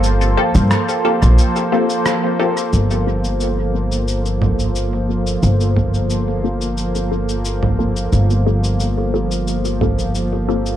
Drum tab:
SH |xx-xxx-xxx-xx--x|xx-xx--xxx-xx--x|xx-xx--xxx-xx--x|xx-xx--xxx-xx--x|
SD |----r-------r---|----------------|----------------|----------------|
CG |----------------|----------O-----|--O----------O--|----------O-----|